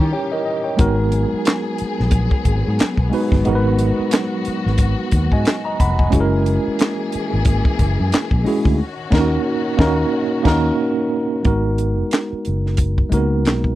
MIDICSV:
0, 0, Header, 1, 6, 480
1, 0, Start_track
1, 0, Key_signature, 5, "minor"
1, 0, Tempo, 666667
1, 568, Time_signature, 4, 2, 24, 8
1, 9901, End_track
2, 0, Start_track
2, 0, Title_t, "Tine electric piano"
2, 0, Program_c, 0, 4
2, 0, Control_c, 0, 64, 127
2, 0, Note_on_c, 0, 55, 87
2, 0, Note_on_c, 0, 61, 85
2, 0, Note_on_c, 0, 63, 82
2, 0, Note_on_c, 0, 64, 82
2, 0, Note_on_c, 0, 70, 91
2, 0, Note_on_c, 0, 82, 67
2, 74, Note_off_c, 0, 82, 0
2, 89, Note_on_c, 0, 73, 63
2, 94, Note_on_c, 0, 79, 72
2, 96, Note_on_c, 0, 67, 53
2, 220, Note_off_c, 0, 73, 0
2, 223, Note_off_c, 0, 67, 0
2, 229, Note_on_c, 0, 75, 69
2, 237, Note_off_c, 0, 70, 0
2, 237, Note_on_c, 0, 70, 56
2, 314, Note_off_c, 0, 79, 0
2, 320, Note_off_c, 0, 75, 0
2, 329, Note_on_c, 0, 75, 67
2, 460, Note_off_c, 0, 70, 0
2, 462, Note_on_c, 0, 79, 58
2, 466, Note_on_c, 0, 73, 52
2, 551, Note_off_c, 0, 75, 0
2, 551, Note_on_c, 0, 56, 90
2, 559, Note_on_c, 0, 59, 74
2, 565, Note_off_c, 0, 63, 0
2, 565, Note_on_c, 0, 63, 75
2, 572, Note_on_c, 0, 66, 83
2, 577, Control_c, 0, 64, 0
2, 578, Note_off_c, 0, 55, 0
2, 581, Note_off_c, 0, 61, 0
2, 582, Note_off_c, 0, 64, 0
2, 582, Note_on_c, 0, 70, 96
2, 692, Note_off_c, 0, 79, 0
2, 694, Note_off_c, 0, 73, 0
2, 727, Control_c, 0, 64, 127
2, 1434, Note_off_c, 0, 56, 0
2, 1437, Note_off_c, 0, 59, 0
2, 1440, Note_off_c, 0, 63, 0
2, 1444, Note_off_c, 0, 66, 0
2, 1449, Note_off_c, 0, 70, 0
2, 2231, Note_on_c, 0, 56, 79
2, 2242, Note_on_c, 0, 59, 72
2, 2250, Note_on_c, 0, 63, 76
2, 2254, Note_on_c, 0, 66, 78
2, 2262, Note_on_c, 0, 71, 93
2, 2458, Note_off_c, 0, 56, 0
2, 2463, Note_off_c, 0, 59, 0
2, 2467, Note_off_c, 0, 63, 0
2, 2469, Note_off_c, 0, 66, 0
2, 2473, Note_off_c, 0, 71, 0
2, 2481, Note_on_c, 0, 56, 89
2, 2490, Note_on_c, 0, 59, 83
2, 2497, Note_on_c, 0, 63, 79
2, 2502, Note_on_c, 0, 66, 81
2, 2508, Note_on_c, 0, 70, 74
2, 2552, Note_off_c, 0, 70, 0
2, 2558, Note_on_c, 0, 71, 96
2, 3358, Note_off_c, 0, 56, 0
2, 3363, Note_off_c, 0, 59, 0
2, 3366, Note_off_c, 0, 63, 0
2, 3369, Note_off_c, 0, 66, 0
2, 3397, Note_off_c, 0, 71, 0
2, 3835, Note_on_c, 0, 80, 69
2, 3839, Note_on_c, 0, 75, 56
2, 4058, Note_off_c, 0, 80, 0
2, 4061, Note_off_c, 0, 75, 0
2, 4069, Note_on_c, 0, 82, 73
2, 4078, Note_on_c, 0, 75, 62
2, 4164, Note_off_c, 0, 82, 0
2, 4169, Note_off_c, 0, 75, 0
2, 4176, Note_on_c, 0, 83, 74
2, 4181, Note_on_c, 0, 78, 64
2, 4303, Note_off_c, 0, 83, 0
2, 4306, Note_off_c, 0, 78, 0
2, 4311, Note_on_c, 0, 80, 61
2, 4314, Note_on_c, 0, 75, 52
2, 4392, Note_on_c, 0, 56, 90
2, 4396, Note_on_c, 0, 61, 87
2, 4410, Note_on_c, 0, 64, 84
2, 4412, Note_on_c, 0, 66, 76
2, 4415, Control_c, 0, 64, 0
2, 4422, Note_on_c, 0, 68, 75
2, 4467, Note_on_c, 0, 70, 100
2, 4469, Note_off_c, 0, 68, 0
2, 4537, Note_off_c, 0, 80, 0
2, 4538, Note_off_c, 0, 75, 0
2, 4549, Control_c, 0, 64, 127
2, 5274, Note_off_c, 0, 56, 0
2, 5276, Note_off_c, 0, 61, 0
2, 5283, Note_off_c, 0, 64, 0
2, 5284, Note_off_c, 0, 66, 0
2, 5311, Note_off_c, 0, 70, 0
2, 6075, Note_on_c, 0, 56, 87
2, 6083, Note_on_c, 0, 61, 69
2, 6095, Note_on_c, 0, 64, 69
2, 6098, Note_on_c, 0, 66, 75
2, 6105, Note_on_c, 0, 68, 87
2, 6300, Note_off_c, 0, 56, 0
2, 6304, Note_off_c, 0, 61, 0
2, 6310, Note_off_c, 0, 64, 0
2, 6311, Note_off_c, 0, 66, 0
2, 6315, Note_off_c, 0, 68, 0
2, 6336, Control_c, 0, 64, 0
2, 6450, Control_c, 0, 64, 127
2, 6555, Note_on_c, 0, 58, 93
2, 6563, Note_on_c, 0, 61, 91
2, 6572, Note_on_c, 0, 63, 98
2, 6587, Note_on_c, 0, 70, 93
2, 6627, Note_on_c, 0, 66, 99
2, 6730, Note_off_c, 0, 58, 0
2, 6735, Note_off_c, 0, 61, 0
2, 6739, Note_off_c, 0, 63, 0
2, 6748, Note_off_c, 0, 70, 0
2, 6771, Note_off_c, 0, 66, 0
2, 7035, Note_on_c, 0, 58, 103
2, 7045, Note_on_c, 0, 61, 94
2, 7052, Note_on_c, 0, 63, 100
2, 7065, Note_on_c, 0, 70, 106
2, 7105, Note_on_c, 0, 66, 98
2, 7210, Note_off_c, 0, 58, 0
2, 7216, Note_off_c, 0, 61, 0
2, 7220, Note_off_c, 0, 63, 0
2, 7227, Note_off_c, 0, 70, 0
2, 7250, Note_off_c, 0, 66, 0
2, 7510, Note_on_c, 0, 58, 106
2, 7517, Note_on_c, 0, 61, 94
2, 7522, Note_on_c, 0, 63, 100
2, 7529, Note_on_c, 0, 66, 99
2, 7539, Note_on_c, 0, 70, 104
2, 7687, Note_off_c, 0, 58, 0
2, 7691, Note_off_c, 0, 61, 0
2, 7694, Note_off_c, 0, 63, 0
2, 7698, Note_off_c, 0, 66, 0
2, 7703, Note_off_c, 0, 70, 0
2, 8229, Note_on_c, 0, 56, 75
2, 8238, Note_on_c, 0, 59, 64
2, 8245, Note_on_c, 0, 63, 66
2, 8251, Note_on_c, 0, 66, 71
2, 8255, Control_c, 0, 64, 0
2, 8261, Note_on_c, 0, 70, 80
2, 8385, Control_c, 0, 64, 127
2, 9112, Note_off_c, 0, 56, 0
2, 9117, Note_off_c, 0, 59, 0
2, 9120, Note_off_c, 0, 63, 0
2, 9123, Note_off_c, 0, 66, 0
2, 9128, Note_off_c, 0, 70, 0
2, 9426, Note_on_c, 0, 56, 80
2, 9436, Note_on_c, 0, 58, 56
2, 9445, Note_on_c, 0, 63, 69
2, 9450, Note_on_c, 0, 66, 69
2, 9460, Note_on_c, 0, 70, 80
2, 9483, Note_on_c, 0, 59, 74
2, 9496, Note_off_c, 0, 58, 0
2, 9901, Note_off_c, 0, 56, 0
2, 9901, Note_off_c, 0, 59, 0
2, 9901, Note_off_c, 0, 63, 0
2, 9901, Note_off_c, 0, 66, 0
2, 9901, Note_off_c, 0, 70, 0
2, 9901, End_track
3, 0, Start_track
3, 0, Title_t, "String section"
3, 0, Program_c, 1, 48
3, 0, Note_on_c, 1, 52, 78
3, 0, Note_on_c, 1, 61, 65
3, 0, Note_on_c, 1, 67, 85
3, 550, Note_off_c, 1, 61, 0
3, 550, Note_off_c, 1, 67, 0
3, 551, Note_off_c, 1, 52, 0
3, 574, Note_on_c, 1, 54, 73
3, 576, Note_on_c, 1, 68, 85
3, 581, Note_on_c, 1, 59, 68
3, 2473, Note_off_c, 1, 68, 0
3, 2491, Note_on_c, 1, 66, 83
3, 4382, Note_off_c, 1, 54, 0
3, 4386, Note_off_c, 1, 59, 0
3, 4390, Note_off_c, 1, 66, 0
3, 4414, Note_on_c, 1, 68, 90
3, 4416, Note_on_c, 1, 52, 78
3, 4417, Note_on_c, 1, 58, 72
3, 6312, Note_off_c, 1, 68, 0
3, 6313, Note_off_c, 1, 52, 0
3, 6313, Note_off_c, 1, 58, 0
3, 6323, Note_on_c, 1, 51, 79
3, 6323, Note_on_c, 1, 61, 69
3, 6330, Note_on_c, 1, 66, 87
3, 8226, Note_off_c, 1, 51, 0
3, 8226, Note_off_c, 1, 61, 0
3, 8230, Note_off_c, 1, 66, 0
3, 9901, End_track
4, 0, Start_track
4, 0, Title_t, "Fretless electric bass"
4, 0, Program_c, 2, 35
4, 0, Note_on_c, 2, 51, 93
4, 78, Note_off_c, 2, 51, 0
4, 581, Note_on_c, 2, 32, 103
4, 892, Note_off_c, 2, 32, 0
4, 1442, Note_on_c, 2, 34, 91
4, 1636, Note_off_c, 2, 34, 0
4, 1771, Note_on_c, 2, 32, 106
4, 1885, Note_off_c, 2, 32, 0
4, 1926, Note_on_c, 2, 44, 93
4, 2003, Note_off_c, 2, 44, 0
4, 2149, Note_on_c, 2, 35, 86
4, 2233, Note_off_c, 2, 35, 0
4, 2398, Note_on_c, 2, 31, 95
4, 2478, Note_off_c, 2, 31, 0
4, 2497, Note_on_c, 2, 32, 104
4, 2809, Note_off_c, 2, 32, 0
4, 3357, Note_on_c, 2, 32, 90
4, 3553, Note_off_c, 2, 32, 0
4, 3696, Note_on_c, 2, 39, 89
4, 3808, Note_off_c, 2, 39, 0
4, 3835, Note_on_c, 2, 44, 93
4, 3916, Note_off_c, 2, 44, 0
4, 4181, Note_on_c, 2, 29, 85
4, 4376, Note_off_c, 2, 29, 0
4, 4420, Note_on_c, 2, 30, 113
4, 4731, Note_off_c, 2, 30, 0
4, 5281, Note_on_c, 2, 32, 86
4, 5475, Note_off_c, 2, 32, 0
4, 5617, Note_on_c, 2, 30, 95
4, 5729, Note_off_c, 2, 30, 0
4, 5761, Note_on_c, 2, 42, 93
4, 5840, Note_off_c, 2, 42, 0
4, 5993, Note_on_c, 2, 34, 79
4, 6075, Note_off_c, 2, 34, 0
4, 6238, Note_on_c, 2, 38, 93
4, 6334, Note_off_c, 2, 38, 0
4, 6576, Note_on_c, 2, 39, 99
4, 6742, Note_off_c, 2, 39, 0
4, 7055, Note_on_c, 2, 39, 93
4, 7222, Note_off_c, 2, 39, 0
4, 7533, Note_on_c, 2, 39, 108
4, 7700, Note_off_c, 2, 39, 0
4, 8253, Note_on_c, 2, 32, 86
4, 8653, Note_off_c, 2, 32, 0
4, 8981, Note_on_c, 2, 30, 76
4, 9377, Note_off_c, 2, 30, 0
4, 9453, Note_on_c, 2, 37, 88
4, 9707, Note_off_c, 2, 37, 0
4, 9707, Note_on_c, 2, 35, 79
4, 9900, Note_off_c, 2, 35, 0
4, 9901, End_track
5, 0, Start_track
5, 0, Title_t, "Muted fretless electric bass strokes"
5, 963, Note_on_c, 9, 29, 43
5, 1035, Note_off_c, 9, 29, 0
5, 1307, Note_on_c, 9, 29, 47
5, 1379, Note_off_c, 9, 29, 0
5, 2026, Note_on_c, 9, 29, 47
5, 2098, Note_off_c, 9, 29, 0
5, 2877, Note_on_c, 9, 29, 46
5, 2949, Note_off_c, 9, 29, 0
5, 3223, Note_on_c, 9, 29, 42
5, 3295, Note_off_c, 9, 29, 0
5, 4807, Note_on_c, 9, 29, 45
5, 4879, Note_off_c, 9, 29, 0
5, 5149, Note_on_c, 9, 29, 43
5, 5221, Note_off_c, 9, 29, 0
5, 5863, Note_on_c, 9, 29, 45
5, 5935, Note_off_c, 9, 29, 0
5, 8876, Note_on_c, 9, 29, 41
5, 8948, Note_off_c, 9, 29, 0
5, 9901, End_track
6, 0, Start_track
6, 0, Title_t, "Drums"
6, 567, Note_on_c, 9, 42, 74
6, 570, Note_on_c, 9, 36, 113
6, 639, Note_off_c, 9, 42, 0
6, 642, Note_off_c, 9, 36, 0
6, 805, Note_on_c, 9, 42, 62
6, 877, Note_off_c, 9, 42, 0
6, 1046, Note_on_c, 9, 42, 74
6, 1064, Note_on_c, 9, 38, 122
6, 1065, Note_on_c, 9, 39, 101
6, 1118, Note_off_c, 9, 42, 0
6, 1136, Note_off_c, 9, 38, 0
6, 1137, Note_off_c, 9, 39, 0
6, 1284, Note_on_c, 9, 42, 58
6, 1356, Note_off_c, 9, 42, 0
6, 1439, Note_on_c, 9, 38, 36
6, 1511, Note_off_c, 9, 38, 0
6, 1518, Note_on_c, 9, 42, 85
6, 1524, Note_on_c, 9, 36, 94
6, 1590, Note_off_c, 9, 42, 0
6, 1596, Note_off_c, 9, 36, 0
6, 1664, Note_on_c, 9, 36, 90
6, 1736, Note_off_c, 9, 36, 0
6, 1765, Note_on_c, 9, 36, 88
6, 1765, Note_on_c, 9, 42, 61
6, 1837, Note_off_c, 9, 36, 0
6, 1837, Note_off_c, 9, 42, 0
6, 2009, Note_on_c, 9, 42, 77
6, 2024, Note_on_c, 9, 38, 112
6, 2024, Note_on_c, 9, 39, 88
6, 2081, Note_off_c, 9, 42, 0
6, 2096, Note_off_c, 9, 38, 0
6, 2096, Note_off_c, 9, 39, 0
6, 2141, Note_on_c, 9, 36, 82
6, 2213, Note_off_c, 9, 36, 0
6, 2252, Note_on_c, 9, 46, 48
6, 2324, Note_off_c, 9, 46, 0
6, 2389, Note_on_c, 9, 36, 97
6, 2395, Note_on_c, 9, 38, 39
6, 2461, Note_off_c, 9, 36, 0
6, 2467, Note_off_c, 9, 38, 0
6, 2484, Note_on_c, 9, 42, 73
6, 2556, Note_off_c, 9, 42, 0
6, 2726, Note_on_c, 9, 42, 64
6, 2798, Note_off_c, 9, 42, 0
6, 2961, Note_on_c, 9, 42, 82
6, 2979, Note_on_c, 9, 38, 116
6, 2980, Note_on_c, 9, 39, 99
6, 3033, Note_off_c, 9, 42, 0
6, 3051, Note_off_c, 9, 38, 0
6, 3052, Note_off_c, 9, 39, 0
6, 3203, Note_on_c, 9, 42, 62
6, 3275, Note_off_c, 9, 42, 0
6, 3364, Note_on_c, 9, 38, 38
6, 3436, Note_off_c, 9, 38, 0
6, 3440, Note_on_c, 9, 42, 82
6, 3446, Note_on_c, 9, 36, 89
6, 3512, Note_off_c, 9, 42, 0
6, 3518, Note_off_c, 9, 36, 0
6, 3683, Note_on_c, 9, 42, 67
6, 3688, Note_on_c, 9, 36, 83
6, 3755, Note_off_c, 9, 42, 0
6, 3760, Note_off_c, 9, 36, 0
6, 3828, Note_on_c, 9, 36, 81
6, 3900, Note_off_c, 9, 36, 0
6, 3927, Note_on_c, 9, 42, 76
6, 3942, Note_on_c, 9, 38, 104
6, 3943, Note_on_c, 9, 39, 86
6, 3999, Note_off_c, 9, 42, 0
6, 4014, Note_off_c, 9, 38, 0
6, 4015, Note_off_c, 9, 39, 0
6, 4175, Note_on_c, 9, 36, 89
6, 4176, Note_on_c, 9, 42, 69
6, 4247, Note_off_c, 9, 36, 0
6, 4248, Note_off_c, 9, 42, 0
6, 4313, Note_on_c, 9, 36, 92
6, 4385, Note_off_c, 9, 36, 0
6, 4407, Note_on_c, 9, 42, 73
6, 4412, Note_on_c, 9, 36, 103
6, 4479, Note_off_c, 9, 42, 0
6, 4484, Note_off_c, 9, 36, 0
6, 4653, Note_on_c, 9, 42, 64
6, 4725, Note_off_c, 9, 42, 0
6, 4889, Note_on_c, 9, 42, 80
6, 4907, Note_on_c, 9, 38, 119
6, 4907, Note_on_c, 9, 39, 96
6, 4961, Note_off_c, 9, 42, 0
6, 4979, Note_off_c, 9, 38, 0
6, 4979, Note_off_c, 9, 39, 0
6, 5129, Note_on_c, 9, 42, 62
6, 5201, Note_off_c, 9, 42, 0
6, 5363, Note_on_c, 9, 42, 84
6, 5368, Note_on_c, 9, 36, 91
6, 5435, Note_off_c, 9, 42, 0
6, 5440, Note_off_c, 9, 36, 0
6, 5508, Note_on_c, 9, 36, 93
6, 5580, Note_off_c, 9, 36, 0
6, 5610, Note_on_c, 9, 36, 79
6, 5610, Note_on_c, 9, 42, 60
6, 5682, Note_off_c, 9, 36, 0
6, 5682, Note_off_c, 9, 42, 0
6, 5849, Note_on_c, 9, 42, 81
6, 5864, Note_on_c, 9, 38, 106
6, 5864, Note_on_c, 9, 39, 83
6, 5921, Note_off_c, 9, 42, 0
6, 5936, Note_off_c, 9, 38, 0
6, 5936, Note_off_c, 9, 39, 0
6, 5984, Note_on_c, 9, 36, 86
6, 6056, Note_off_c, 9, 36, 0
6, 6094, Note_on_c, 9, 46, 49
6, 6166, Note_off_c, 9, 46, 0
6, 6231, Note_on_c, 9, 36, 100
6, 6303, Note_off_c, 9, 36, 0
6, 6564, Note_on_c, 9, 49, 78
6, 6567, Note_on_c, 9, 36, 97
6, 6578, Note_on_c, 9, 38, 91
6, 6636, Note_off_c, 9, 49, 0
6, 6639, Note_off_c, 9, 36, 0
6, 6650, Note_off_c, 9, 38, 0
6, 7047, Note_on_c, 9, 36, 106
6, 7058, Note_on_c, 9, 38, 111
6, 7119, Note_off_c, 9, 36, 0
6, 7130, Note_off_c, 9, 38, 0
6, 7525, Note_on_c, 9, 36, 100
6, 7525, Note_on_c, 9, 49, 81
6, 7538, Note_on_c, 9, 38, 102
6, 7597, Note_off_c, 9, 36, 0
6, 7597, Note_off_c, 9, 49, 0
6, 7610, Note_off_c, 9, 38, 0
6, 8241, Note_on_c, 9, 42, 66
6, 8245, Note_on_c, 9, 36, 91
6, 8313, Note_off_c, 9, 42, 0
6, 8317, Note_off_c, 9, 36, 0
6, 8483, Note_on_c, 9, 42, 59
6, 8555, Note_off_c, 9, 42, 0
6, 8721, Note_on_c, 9, 42, 71
6, 8738, Note_on_c, 9, 38, 104
6, 8739, Note_on_c, 9, 39, 91
6, 8793, Note_off_c, 9, 42, 0
6, 8810, Note_off_c, 9, 38, 0
6, 8811, Note_off_c, 9, 39, 0
6, 8963, Note_on_c, 9, 42, 51
6, 9035, Note_off_c, 9, 42, 0
6, 9117, Note_on_c, 9, 38, 34
6, 9189, Note_off_c, 9, 38, 0
6, 9196, Note_on_c, 9, 42, 80
6, 9203, Note_on_c, 9, 36, 80
6, 9268, Note_off_c, 9, 42, 0
6, 9275, Note_off_c, 9, 36, 0
6, 9345, Note_on_c, 9, 36, 81
6, 9417, Note_off_c, 9, 36, 0
6, 9446, Note_on_c, 9, 36, 77
6, 9446, Note_on_c, 9, 42, 58
6, 9518, Note_off_c, 9, 36, 0
6, 9518, Note_off_c, 9, 42, 0
6, 9686, Note_on_c, 9, 42, 73
6, 9701, Note_on_c, 9, 38, 95
6, 9702, Note_on_c, 9, 39, 76
6, 9758, Note_off_c, 9, 42, 0
6, 9773, Note_off_c, 9, 38, 0
6, 9774, Note_off_c, 9, 39, 0
6, 9822, Note_on_c, 9, 36, 77
6, 9894, Note_off_c, 9, 36, 0
6, 9901, End_track
0, 0, End_of_file